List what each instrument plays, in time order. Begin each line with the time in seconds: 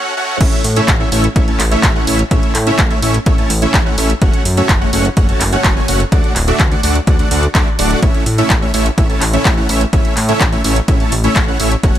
Already playing: supersaw synth A3 C#4 F#4 C#5 F#5
0.17 supersaw synth A3 C#4 F#4 C#5 F#5
0.41 analog synth bass A1, supersaw synth A3 C#4 E4 C#5 E5, kick, closed hi-hat, crash
0.53 closed hi-hat
0.64 analog synth bass A2, open hi-hat
0.76 supersaw synth A3 C#4 E4 C#5 E5, closed hi-hat
0.88 analog synth bass A1, kick, clap, closed hi-hat
1.00 supersaw synth A3 C#4 E4 C#5 E5
1.12 analog synth bass A1, supersaw synth A3 C#4 E4 C#5 E5, open hi-hat
1.24 closed hi-hat
1.36 analog synth bass A1, supersaw synth A3 C#4 E4 C#5 E5, kick, closed hi-hat
1.48 supersaw synth A3 C#4 E4 C#5 A5, closed hi-hat
1.60 analog synth bass A1, clap, open hi-hat
1.72 supersaw synth A3 C#4 E4 C#5 E5, closed hi-hat
1.83 analog synth bass A1, kick, clap, closed hi-hat
1.95 supersaw synth A3 C#4 E4 C#5 F#5
2.07 analog synth bass A1, supersaw synth A3 C#4 E4 C#5 E5, open hi-hat
2.19 closed hi-hat
2.31 analog synth bass A1, supersaw synth A3 C#4 E4 C#5 E5, kick, closed hi-hat
2.43 closed hi-hat
2.55 analog synth bass A2, clap, open hi-hat
2.67 supersaw synth A3 C#4 E4 C#5 E5, closed hi-hat
2.79 analog synth bass A1, kick, clap, closed hi-hat
2.91 supersaw synth A3 C#4 E4 C#5 E5, closed hi-hat
3.02 analog synth bass A1, supersaw synth A3 C#4 E4 C#5 E5, open hi-hat
3.14 closed hi-hat
3.26 analog synth bass A1, supersaw synth A3 C#4 E4 C#5 E5, kick, closed hi-hat
3.38 supersaw synth A3 C#4 E4 C#5 A5, closed hi-hat
3.50 analog synth bass A1, open hi-hat
3.62 supersaw synth A3 C#4 E4 C#5 E5, closed hi-hat
3.74 analog synth bass A1, kick, clap, closed hi-hat
3.86 supersaw synth A3 C#4 E4 C#5 F#5
3.98 analog synth bass A1, supersaw synth A3 C#4 E4 C#5 E5, open hi-hat
4.10 closed hi-hat
4.22 analog synth bass F#1, supersaw synth A3 C#4 F#4 C#5 F#5, kick, closed hi-hat
4.34 closed hi-hat
4.45 analog synth bass F#2, open hi-hat
4.57 supersaw synth A3 C#4 F#4 C#5 E5, closed hi-hat
4.69 analog synth bass F#1, kick, clap, closed hi-hat
4.81 supersaw synth A3 C#4 F#4 C#5 F#5
4.93 analog synth bass F#1, supersaw synth A3 C#4 F#4 C#5 F#5, open hi-hat
5.05 closed hi-hat
5.17 analog synth bass F#1, supersaw synth A3 C#4 F#4 C#5 F#5, kick, closed hi-hat
5.29 supersaw synth A3 C#4 F#4 C#5 A5, closed hi-hat
5.41 analog synth bass F#1, clap, open hi-hat
5.53 supersaw synth A3 C#4 F#4 C#5 F#5, closed hi-hat
5.64 analog synth bass F#1, kick, clap, closed hi-hat
5.76 supersaw synth A3 C#4 F#4 C#5 G#5
5.88 analog synth bass F#1, supersaw synth A3 C#4 F#4 C#5 F#5, open hi-hat
6.00 closed hi-hat
6.12 analog synth bass D2, supersaw synth A3 D4 F#4 D5 F#5, kick, closed hi-hat
6.24 closed hi-hat
6.36 analog synth bass D1, clap, open hi-hat
6.48 supersaw synth A3 D4 F#4 D5 E5, closed hi-hat
6.60 analog synth bass D2, kick, clap, closed hi-hat
6.72 supersaw synth A3 D4 F#4 D5 F#5, closed hi-hat
6.83 analog synth bass D2, supersaw synth A3 D4 F#4 D5 F#5, open hi-hat
6.95 closed hi-hat
7.07 analog synth bass D2, supersaw synth A3 D4 F#4 D5 F#5, kick, closed hi-hat
7.19 supersaw synth A3 D4 F#4 D5 F#5, closed hi-hat
7.31 analog synth bass D2, supersaw synth A3 D4 F#4 D5 F#5, open hi-hat
7.43 closed hi-hat
7.55 analog synth bass D2, supersaw synth A3 D4 F#4 D5 E5, kick, clap, closed hi-hat
7.79 analog synth bass D1, supersaw synth A3 D4 F#4 D5 F#5, open hi-hat
7.91 closed hi-hat
8.02 analog synth bass A1, supersaw synth A3 E4 E5, kick, closed hi-hat
8.14 closed hi-hat
8.26 analog synth bass A2, open hi-hat
8.38 supersaw synth A3 C#4 E4 C#5 E5, closed hi-hat
8.50 analog synth bass A1, kick, clap, closed hi-hat
8.62 supersaw synth A3 C#4 E4 C#5 E5
8.74 analog synth bass A1, supersaw synth A3 C#4 E4 C#5 E5, open hi-hat
8.86 closed hi-hat
8.98 analog synth bass A1, supersaw synth A3 C#4 E4 C#5 E5, kick, closed hi-hat
9.10 supersaw synth A3 C#4 E4 C#5 A5, closed hi-hat
9.22 analog synth bass A1, clap, open hi-hat
9.33 supersaw synth A3 C#4 E4 C#5 E5, closed hi-hat
9.45 analog synth bass A1, kick, clap, closed hi-hat
9.57 supersaw synth A3 C#4 E4 C#5 F#5
9.69 analog synth bass A1, supersaw synth A3 C#4 E4 C#5 E5, open hi-hat
9.81 closed hi-hat
9.93 analog synth bass A1, supersaw synth A3 C#4 E4 C#5 E5, kick, closed hi-hat
10.05 closed hi-hat
10.17 analog synth bass A2, clap, open hi-hat
10.29 supersaw synth A3 C#4 E4 C#5 E5, closed hi-hat
10.41 analog synth bass A1, kick, clap, closed hi-hat
10.52 supersaw synth A3 C#4 E4 C#5 E5, closed hi-hat
10.64 analog synth bass A1, supersaw synth A3 C#4 E4 C#5 E5, open hi-hat
10.76 closed hi-hat
10.88 analog synth bass A1, supersaw synth A3 C#4 E4 C#5 E5, kick, closed hi-hat
11.00 supersaw synth A3 C#4 E4 C#5 A5, closed hi-hat
11.12 analog synth bass A1, open hi-hat
11.24 supersaw synth A3 C#4 E4 C#5 E5, closed hi-hat
11.36 analog synth bass A1, kick, clap, closed hi-hat
11.48 supersaw synth A3 C#4 E4 C#5 F#5
11.60 analog synth bass A1, supersaw synth A3 C#4 E4 C#5 E5, open hi-hat
11.72 closed hi-hat
11.83 analog synth bass F#1, supersaw synth A3 C#4 F#4 C#5 F#5, kick, closed hi-hat
11.95 closed hi-hat